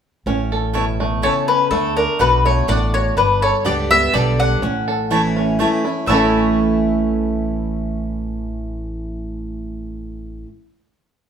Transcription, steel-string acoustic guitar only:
0, 0, Header, 1, 2, 480
1, 0, Start_track
1, 0, Tempo, 483481
1, 262, Time_signature, 3, 2, 24, 8
1, 11216, End_track
2, 0, Start_track
2, 0, Title_t, "Steel-string acoustic guitar"
2, 0, Program_c, 0, 25
2, 267, Note_on_c, 0, 45, 87
2, 746, Note_on_c, 0, 47, 87
2, 1178, Note_off_c, 0, 45, 0
2, 1201, Note_off_c, 0, 47, 0
2, 1225, Note_on_c, 0, 49, 87
2, 1681, Note_off_c, 0, 49, 0
2, 1700, Note_on_c, 0, 50, 85
2, 2182, Note_on_c, 0, 47, 81
2, 2617, Note_off_c, 0, 50, 0
2, 2640, Note_off_c, 0, 47, 0
2, 2663, Note_on_c, 0, 45, 90
2, 3122, Note_off_c, 0, 45, 0
2, 3144, Note_on_c, 0, 43, 85
2, 3624, Note_on_c, 0, 50, 84
2, 3634, Note_on_c, 0, 55, 93
2, 3638, Note_on_c, 0, 59, 100
2, 3644, Note_on_c, 0, 67, 101
2, 3866, Note_off_c, 0, 50, 0
2, 3867, Note_off_c, 0, 67, 0
2, 3870, Note_off_c, 0, 55, 0
2, 3873, Note_off_c, 0, 59, 0
2, 3879, Note_on_c, 0, 67, 61
2, 3898, Note_on_c, 0, 59, 47
2, 4061, Note_off_c, 0, 43, 0
2, 4099, Note_off_c, 0, 67, 0
2, 4108, Note_on_c, 0, 50, 94
2, 4109, Note_off_c, 0, 59, 0
2, 4116, Note_on_c, 0, 55, 96
2, 4121, Note_on_c, 0, 59, 87
2, 4128, Note_on_c, 0, 67, 87
2, 4566, Note_off_c, 0, 50, 0
2, 4570, Note_off_c, 0, 55, 0
2, 4572, Note_off_c, 0, 59, 0
2, 4576, Note_off_c, 0, 67, 0
2, 4595, Note_on_c, 0, 45, 88
2, 5070, Note_on_c, 0, 52, 81
2, 5075, Note_on_c, 0, 57, 81
2, 5083, Note_on_c, 0, 61, 91
2, 5088, Note_on_c, 0, 64, 94
2, 5508, Note_off_c, 0, 45, 0
2, 5527, Note_off_c, 0, 52, 0
2, 5530, Note_off_c, 0, 57, 0
2, 5534, Note_off_c, 0, 61, 0
2, 5537, Note_off_c, 0, 64, 0
2, 5555, Note_on_c, 0, 52, 82
2, 5561, Note_on_c, 0, 57, 87
2, 5568, Note_on_c, 0, 61, 95
2, 5576, Note_on_c, 0, 64, 94
2, 5790, Note_off_c, 0, 64, 0
2, 5793, Note_off_c, 0, 52, 0
2, 5796, Note_off_c, 0, 57, 0
2, 5799, Note_off_c, 0, 61, 0
2, 5802, Note_on_c, 0, 64, 56
2, 5822, Note_on_c, 0, 61, 45
2, 6022, Note_off_c, 0, 64, 0
2, 6030, Note_on_c, 0, 45, 75
2, 6032, Note_off_c, 0, 61, 0
2, 6040, Note_on_c, 0, 52, 80
2, 6048, Note_on_c, 0, 57, 85
2, 6055, Note_on_c, 0, 61, 85
2, 6061, Note_on_c, 0, 64, 80
2, 10396, Note_off_c, 0, 45, 0
2, 10401, Note_off_c, 0, 52, 0
2, 10405, Note_off_c, 0, 57, 0
2, 10408, Note_off_c, 0, 61, 0
2, 10411, Note_off_c, 0, 64, 0
2, 11216, End_track
0, 0, End_of_file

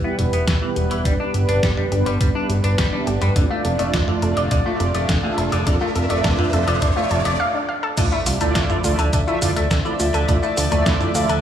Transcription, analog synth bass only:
0, 0, Header, 1, 2, 480
1, 0, Start_track
1, 0, Tempo, 576923
1, 876, Time_signature, 4, 2, 24, 8
1, 9493, End_track
2, 0, Start_track
2, 0, Title_t, "Analog synth bass"
2, 0, Program_c, 0, 38
2, 155, Note_on_c, 0, 28, 90
2, 250, Note_off_c, 0, 28, 0
2, 276, Note_on_c, 0, 28, 82
2, 370, Note_off_c, 0, 28, 0
2, 396, Note_on_c, 0, 28, 99
2, 491, Note_off_c, 0, 28, 0
2, 636, Note_on_c, 0, 28, 96
2, 731, Note_off_c, 0, 28, 0
2, 757, Note_on_c, 0, 28, 77
2, 851, Note_off_c, 0, 28, 0
2, 876, Note_on_c, 0, 31, 93
2, 971, Note_off_c, 0, 31, 0
2, 1117, Note_on_c, 0, 31, 91
2, 1211, Note_off_c, 0, 31, 0
2, 1237, Note_on_c, 0, 31, 84
2, 1331, Note_off_c, 0, 31, 0
2, 1355, Note_on_c, 0, 31, 97
2, 1450, Note_off_c, 0, 31, 0
2, 1598, Note_on_c, 0, 31, 97
2, 1692, Note_off_c, 0, 31, 0
2, 1718, Note_on_c, 0, 31, 80
2, 1812, Note_off_c, 0, 31, 0
2, 1835, Note_on_c, 0, 31, 93
2, 1930, Note_off_c, 0, 31, 0
2, 2077, Note_on_c, 0, 31, 83
2, 2171, Note_off_c, 0, 31, 0
2, 2199, Note_on_c, 0, 31, 82
2, 2292, Note_off_c, 0, 31, 0
2, 2316, Note_on_c, 0, 31, 100
2, 2410, Note_off_c, 0, 31, 0
2, 2557, Note_on_c, 0, 31, 99
2, 2651, Note_off_c, 0, 31, 0
2, 2679, Note_on_c, 0, 31, 84
2, 2772, Note_off_c, 0, 31, 0
2, 2796, Note_on_c, 0, 29, 95
2, 2891, Note_off_c, 0, 29, 0
2, 3036, Note_on_c, 0, 29, 92
2, 3131, Note_off_c, 0, 29, 0
2, 3156, Note_on_c, 0, 29, 81
2, 3251, Note_off_c, 0, 29, 0
2, 3275, Note_on_c, 0, 29, 102
2, 3370, Note_off_c, 0, 29, 0
2, 3517, Note_on_c, 0, 29, 100
2, 3611, Note_off_c, 0, 29, 0
2, 3636, Note_on_c, 0, 29, 81
2, 3730, Note_off_c, 0, 29, 0
2, 3755, Note_on_c, 0, 29, 99
2, 3850, Note_off_c, 0, 29, 0
2, 3995, Note_on_c, 0, 29, 85
2, 4090, Note_off_c, 0, 29, 0
2, 4114, Note_on_c, 0, 29, 87
2, 4210, Note_off_c, 0, 29, 0
2, 4235, Note_on_c, 0, 29, 98
2, 4330, Note_off_c, 0, 29, 0
2, 4475, Note_on_c, 0, 29, 98
2, 4570, Note_off_c, 0, 29, 0
2, 4598, Note_on_c, 0, 29, 82
2, 4691, Note_off_c, 0, 29, 0
2, 4715, Note_on_c, 0, 29, 92
2, 4810, Note_off_c, 0, 29, 0
2, 4957, Note_on_c, 0, 29, 96
2, 5051, Note_off_c, 0, 29, 0
2, 5077, Note_on_c, 0, 29, 82
2, 5171, Note_off_c, 0, 29, 0
2, 5195, Note_on_c, 0, 29, 104
2, 5290, Note_off_c, 0, 29, 0
2, 5436, Note_on_c, 0, 29, 97
2, 5530, Note_off_c, 0, 29, 0
2, 5556, Note_on_c, 0, 29, 80
2, 5651, Note_off_c, 0, 29, 0
2, 5675, Note_on_c, 0, 29, 97
2, 5770, Note_off_c, 0, 29, 0
2, 5916, Note_on_c, 0, 29, 83
2, 6011, Note_off_c, 0, 29, 0
2, 6037, Note_on_c, 0, 29, 86
2, 6131, Note_off_c, 0, 29, 0
2, 6636, Note_on_c, 0, 38, 91
2, 6730, Note_off_c, 0, 38, 0
2, 6877, Note_on_c, 0, 36, 97
2, 6971, Note_off_c, 0, 36, 0
2, 6997, Note_on_c, 0, 38, 78
2, 7091, Note_off_c, 0, 38, 0
2, 7116, Note_on_c, 0, 38, 105
2, 7211, Note_off_c, 0, 38, 0
2, 7358, Note_on_c, 0, 38, 99
2, 7452, Note_off_c, 0, 38, 0
2, 7478, Note_on_c, 0, 38, 82
2, 7571, Note_off_c, 0, 38, 0
2, 7596, Note_on_c, 0, 38, 97
2, 7691, Note_off_c, 0, 38, 0
2, 7837, Note_on_c, 0, 38, 84
2, 7931, Note_off_c, 0, 38, 0
2, 7958, Note_on_c, 0, 38, 79
2, 8052, Note_off_c, 0, 38, 0
2, 8077, Note_on_c, 0, 38, 99
2, 8171, Note_off_c, 0, 38, 0
2, 8319, Note_on_c, 0, 38, 95
2, 8412, Note_off_c, 0, 38, 0
2, 8440, Note_on_c, 0, 38, 82
2, 8533, Note_off_c, 0, 38, 0
2, 8557, Note_on_c, 0, 38, 97
2, 8651, Note_off_c, 0, 38, 0
2, 8799, Note_on_c, 0, 38, 94
2, 8892, Note_off_c, 0, 38, 0
2, 8918, Note_on_c, 0, 38, 83
2, 9012, Note_off_c, 0, 38, 0
2, 9036, Note_on_c, 0, 38, 105
2, 9131, Note_off_c, 0, 38, 0
2, 9278, Note_on_c, 0, 38, 98
2, 9371, Note_off_c, 0, 38, 0
2, 9398, Note_on_c, 0, 38, 77
2, 9492, Note_off_c, 0, 38, 0
2, 9493, End_track
0, 0, End_of_file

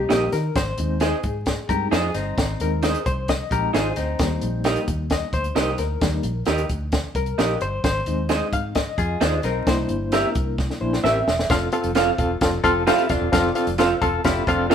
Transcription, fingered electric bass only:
0, 0, Header, 1, 2, 480
1, 0, Start_track
1, 0, Tempo, 456274
1, 587, Time_signature, 4, 2, 24, 8
1, 15516, End_track
2, 0, Start_track
2, 0, Title_t, "Fingered electric bass"
2, 0, Program_c, 0, 33
2, 108, Note_on_c, 0, 34, 82
2, 285, Note_off_c, 0, 34, 0
2, 346, Note_on_c, 0, 51, 94
2, 523, Note_off_c, 0, 51, 0
2, 584, Note_on_c, 0, 32, 106
2, 762, Note_off_c, 0, 32, 0
2, 824, Note_on_c, 0, 39, 98
2, 1178, Note_off_c, 0, 39, 0
2, 1303, Note_on_c, 0, 44, 86
2, 1657, Note_off_c, 0, 44, 0
2, 1779, Note_on_c, 0, 43, 75
2, 1957, Note_off_c, 0, 43, 0
2, 2017, Note_on_c, 0, 41, 86
2, 2196, Note_off_c, 0, 41, 0
2, 2257, Note_on_c, 0, 31, 88
2, 2435, Note_off_c, 0, 31, 0
2, 2499, Note_on_c, 0, 32, 113
2, 2677, Note_off_c, 0, 32, 0
2, 2738, Note_on_c, 0, 39, 95
2, 3092, Note_off_c, 0, 39, 0
2, 3220, Note_on_c, 0, 36, 80
2, 3573, Note_off_c, 0, 36, 0
2, 3692, Note_on_c, 0, 34, 88
2, 3871, Note_off_c, 0, 34, 0
2, 3937, Note_on_c, 0, 32, 91
2, 4113, Note_off_c, 0, 32, 0
2, 4179, Note_on_c, 0, 38, 75
2, 4354, Note_off_c, 0, 38, 0
2, 4414, Note_on_c, 0, 39, 96
2, 4591, Note_off_c, 0, 39, 0
2, 4655, Note_on_c, 0, 34, 91
2, 5008, Note_off_c, 0, 34, 0
2, 5131, Note_on_c, 0, 39, 76
2, 5485, Note_off_c, 0, 39, 0
2, 5607, Note_on_c, 0, 38, 86
2, 5785, Note_off_c, 0, 38, 0
2, 5849, Note_on_c, 0, 36, 88
2, 6026, Note_off_c, 0, 36, 0
2, 6088, Note_on_c, 0, 38, 89
2, 6266, Note_off_c, 0, 38, 0
2, 6328, Note_on_c, 0, 39, 106
2, 6506, Note_off_c, 0, 39, 0
2, 6564, Note_on_c, 0, 34, 103
2, 6743, Note_off_c, 0, 34, 0
2, 6807, Note_on_c, 0, 39, 91
2, 6985, Note_off_c, 0, 39, 0
2, 7044, Note_on_c, 0, 38, 90
2, 7400, Note_off_c, 0, 38, 0
2, 7519, Note_on_c, 0, 36, 89
2, 7700, Note_off_c, 0, 36, 0
2, 7769, Note_on_c, 0, 34, 81
2, 7946, Note_off_c, 0, 34, 0
2, 8009, Note_on_c, 0, 31, 80
2, 8186, Note_off_c, 0, 31, 0
2, 8247, Note_on_c, 0, 32, 112
2, 8425, Note_off_c, 0, 32, 0
2, 8485, Note_on_c, 0, 39, 95
2, 8841, Note_off_c, 0, 39, 0
2, 8968, Note_on_c, 0, 44, 77
2, 9324, Note_off_c, 0, 44, 0
2, 9445, Note_on_c, 0, 41, 89
2, 9624, Note_off_c, 0, 41, 0
2, 9690, Note_on_c, 0, 39, 99
2, 9868, Note_off_c, 0, 39, 0
2, 9928, Note_on_c, 0, 35, 90
2, 10107, Note_off_c, 0, 35, 0
2, 10170, Note_on_c, 0, 36, 107
2, 10348, Note_off_c, 0, 36, 0
2, 10412, Note_on_c, 0, 31, 98
2, 10767, Note_off_c, 0, 31, 0
2, 10892, Note_on_c, 0, 36, 80
2, 11248, Note_off_c, 0, 36, 0
2, 11374, Note_on_c, 0, 34, 81
2, 11551, Note_off_c, 0, 34, 0
2, 11614, Note_on_c, 0, 33, 98
2, 11792, Note_off_c, 0, 33, 0
2, 11858, Note_on_c, 0, 28, 92
2, 12034, Note_off_c, 0, 28, 0
2, 12099, Note_on_c, 0, 29, 98
2, 12275, Note_off_c, 0, 29, 0
2, 12458, Note_on_c, 0, 29, 111
2, 12724, Note_off_c, 0, 29, 0
2, 12819, Note_on_c, 0, 28, 84
2, 12996, Note_off_c, 0, 28, 0
2, 13057, Note_on_c, 0, 29, 116
2, 13235, Note_off_c, 0, 29, 0
2, 13294, Note_on_c, 0, 29, 104
2, 13562, Note_off_c, 0, 29, 0
2, 13778, Note_on_c, 0, 28, 95
2, 13867, Note_off_c, 0, 28, 0
2, 13902, Note_on_c, 0, 28, 97
2, 13990, Note_off_c, 0, 28, 0
2, 14021, Note_on_c, 0, 29, 108
2, 14198, Note_off_c, 0, 29, 0
2, 14380, Note_on_c, 0, 29, 113
2, 14647, Note_off_c, 0, 29, 0
2, 14744, Note_on_c, 0, 28, 95
2, 14921, Note_off_c, 0, 28, 0
2, 14988, Note_on_c, 0, 29, 107
2, 15164, Note_off_c, 0, 29, 0
2, 15224, Note_on_c, 0, 29, 83
2, 15490, Note_off_c, 0, 29, 0
2, 15516, End_track
0, 0, End_of_file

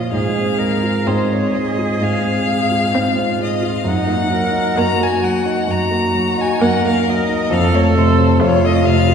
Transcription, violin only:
0, 0, Header, 1, 2, 480
1, 0, Start_track
1, 0, Tempo, 946372
1, 55, Time_signature, 4, 2, 24, 8
1, 1496, Tempo, 916031
1, 3416, Tempo, 896861
1, 4771, End_track
2, 0, Start_track
2, 0, Title_t, "Violin"
2, 0, Program_c, 0, 40
2, 0, Note_on_c, 0, 75, 53
2, 62, Note_off_c, 0, 75, 0
2, 66, Note_on_c, 0, 77, 69
2, 543, Note_on_c, 0, 72, 58
2, 550, Note_off_c, 0, 77, 0
2, 672, Note_on_c, 0, 73, 56
2, 680, Note_off_c, 0, 72, 0
2, 786, Note_on_c, 0, 75, 59
2, 793, Note_off_c, 0, 73, 0
2, 1025, Note_on_c, 0, 77, 78
2, 1033, Note_off_c, 0, 75, 0
2, 1740, Note_off_c, 0, 77, 0
2, 1748, Note_on_c, 0, 75, 62
2, 1863, Note_on_c, 0, 77, 55
2, 1871, Note_off_c, 0, 75, 0
2, 1983, Note_on_c, 0, 78, 70
2, 1991, Note_off_c, 0, 77, 0
2, 2456, Note_on_c, 0, 82, 85
2, 2464, Note_off_c, 0, 78, 0
2, 2586, Note_on_c, 0, 80, 74
2, 2594, Note_off_c, 0, 82, 0
2, 2697, Note_on_c, 0, 78, 71
2, 2704, Note_off_c, 0, 80, 0
2, 2939, Note_on_c, 0, 82, 74
2, 2947, Note_off_c, 0, 78, 0
2, 3310, Note_on_c, 0, 80, 69
2, 3318, Note_off_c, 0, 82, 0
2, 3418, Note_on_c, 0, 78, 76
2, 3426, Note_off_c, 0, 80, 0
2, 3539, Note_off_c, 0, 78, 0
2, 3554, Note_on_c, 0, 77, 76
2, 3673, Note_on_c, 0, 75, 71
2, 3681, Note_off_c, 0, 77, 0
2, 3905, Note_on_c, 0, 77, 83
2, 3913, Note_off_c, 0, 75, 0
2, 4028, Note_on_c, 0, 73, 69
2, 4036, Note_off_c, 0, 77, 0
2, 4145, Note_on_c, 0, 72, 64
2, 4153, Note_off_c, 0, 73, 0
2, 4377, Note_off_c, 0, 72, 0
2, 4382, Note_on_c, 0, 73, 84
2, 4508, Note_on_c, 0, 75, 76
2, 4516, Note_off_c, 0, 73, 0
2, 4618, Note_on_c, 0, 77, 90
2, 4626, Note_off_c, 0, 75, 0
2, 4771, Note_off_c, 0, 77, 0
2, 4771, End_track
0, 0, End_of_file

